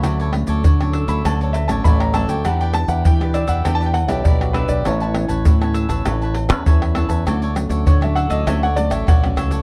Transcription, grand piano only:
Already playing: B5
1.09 B5
1.26 A5
1.42 C#5
1.53 E5
1.68 A5
1.84 B5
2.00 A#5
2.14 A5
2.29 G5
2.46 F#5
2.61 G5
2.74 A5
2.89 F#5
3.07 G5
3.23 B4
3.34 D5
3.49 F#5
3.65 G5
3.75 A5
3.86 G5
3.94 F#5
4.08 E5
4.24 D5
4.42 F#4
4.53 B4
4.69 D5
4.85 C#5
7.87 C#5
8.04 E5
8.15 F#5
8.30 D#5
8.47 E5
8.63 F#5
8.76 D5
8.91 E5
9.08 F#5

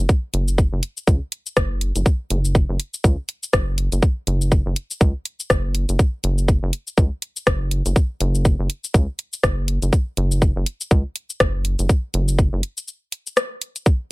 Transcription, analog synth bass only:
0.34 F#1
0.73 F#1
1.07 C#2
1.57 F#1
1.96 F#1
2.30 F#1
2.69 F#1
3.04 C#2
3.53 F#1
3.92 F#1
4.27 F#1
4.66 F#1
5.01 C#2
5.50 F#1
5.89 F#1
6.24 F#1
6.63 F#1
6.98 C#2
7.47 F#1
7.86 F#1
8.21 F#1
8.59 F#1
8.94 C#2
9.43 F#1
9.82 F#1
10.17 F#1
10.56 F#1
10.91 C#2
11.40 F#1
11.79 F#1
12.14 F#1
12.53 F#1

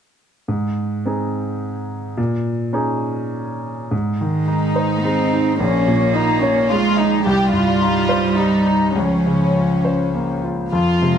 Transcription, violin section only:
4.48 D#4
5.60 C#4
6.15 D#4
6.41 C#4
6.70 F4
6.98 D#4
7.25 G4
7.51 F4
8.37 D#4
8.94 C#4
10.72 F4

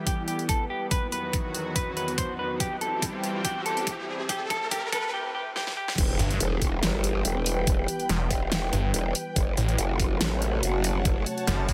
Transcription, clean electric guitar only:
0.07 G4
0.28 G4
0.49 A4
0.70 G4
0.91 B4
1.12 B4
1.76 B4
1.97 B4
2.18 C5
2.39 B4
2.60 G4
2.81 A4
3.45 G4
3.66 A4
4.29 G4
4.50 A4
4.71 G4
4.92 A4
5.14 G4
5.35 G4
5.56 G4
5.77 G4

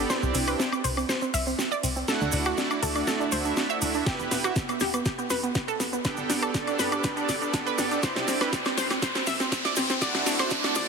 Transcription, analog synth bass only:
0.23 C2
0.35 C2
0.84 C2
1.34 C2
1.83 C2
2.21 D2
2.33 D2
2.83 D2
3.32 D2
3.82 D2
4.19 E1
4.31 E1
4.81 E1
5.30 E1
5.80 E1
6.18 G1
6.30 G1
6.79 G1
7.29 G1
7.78 G1
8.16 C2
8.28 C2
8.78 C2
9.27 C2
9.77 C2
10.14 D2
10.26 D2
10.76 D2

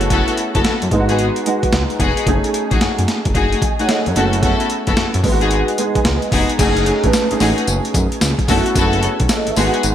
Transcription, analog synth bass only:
Already playing: F#1
0.55 F#1
0.65 F#2
0.83 F#2
0.92 G#1
1.73 C#2
2.00 F1
2.27 F#1
2.72 A1
2.81 F#2
2.99 F#2
3.26 F#1
3.35 F#1
4.07 F#2
4.16 F#1
4.88 F#1
4.97 F#2
5.15 F#2
5.24 G#1
6.05 C#2
6.32 F1
6.59 F#1
7.04 A1
7.31 A1
7.41 A1
7.68 F#1
7.95 F#2
8.22 C#2
8.49 F#1
8.76 F#1
9.20 B1
9.47 G#1
9.57 G#1
9.84 G#1

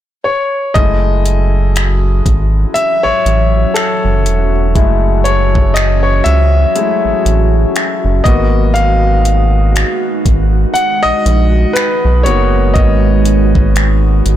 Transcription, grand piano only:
0.24 C#5
0.74 G#3 A3 E4 D#5
2.74 E5
3.03 C#5
3.74 A4
4.75 G#3 A3 E4
5.24 C#5
5.74 D#5
6.03 C#5
6.24 E5
6.75 G#3 A3 E4
8.24 A#3 B3 F#4 D#5
8.74 F5
10.74 F#5
11.03 D#5
11.73 B4
12.23 A#3 B3 F#4 C#5
12.74 D#5

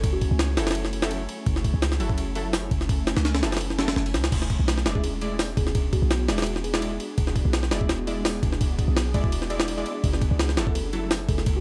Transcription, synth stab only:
Already playing: F#3 E4 A4
0.57 F#3 E4 A4
1.02 F#3 E4 A4
2.00 F#3 E4 A4
2.36 F#3 E4 A4
3.43 F#3 E4 A4
3.78 F#3 E4 A4
4.86 G#3 E4 D5
5.21 G#3 E4 D5
6.28 G#3 E4 D5
6.74 G#3 E4 D5
7.71 G#3 E4 D5
8.07 G#3 E4 D5
9.14 G#3 E4 D5
9.50 G#3 E4 D5
9.77 G#3 E4 D5
10.57 F#3 E4 A4
10.93 F#3 E4 A4

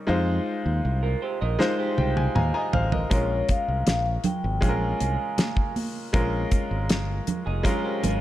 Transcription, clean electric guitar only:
1.03 F4 A#4
1.22 G4 C5
1.41 A#4 D#5
1.79 G4 C5
7.46 D#4 G#4
7.65 F4 A#4
7.84 G4 C5
8.03 G#4 C#5

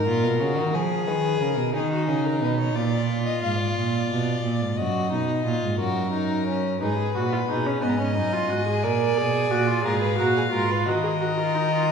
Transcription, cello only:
0.07 A#2
0.23 B2
0.40 C#3
0.57 D#3
0.73 F3
1.07 D#3
1.41 C#3
1.57 B2
1.75 D#3
2.08 C#3
2.42 B2
2.75 A#2
3.42 G#2
3.76 A#2
4.10 B2
4.44 A#2
4.61 G#2
4.78 F#2
5.12 B2
5.46 A#2
5.63 G#2
5.80 F#2
6.82 G#2
7.16 A#2
7.49 B2
7.83 G#2
8.17 F#2
8.50 G#2
8.84 A#2
9.18 B2
9.51 A#2
9.85 G#2
10.19 A#2
10.53 G#2
10.87 D#3

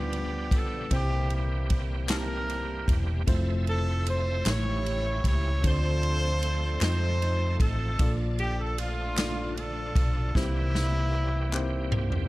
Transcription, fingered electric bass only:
Already playing: D2
0.51 B1
0.91 C2
2.88 E1
3.27 F1
4.46 A1
5.24 C#2
5.64 D2
6.81 F2
7.60 A1
7.99 A#1
9.96 B1
10.35 C2

